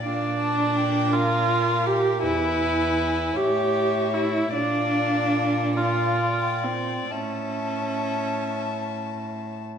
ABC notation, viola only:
X:1
M:6/8
L:1/8
Q:3/8=50
K:Bblyd
V:1 name="Viola"
D3 F2 G | E3 G2 E | D3 F2 C | ^C4- C z |]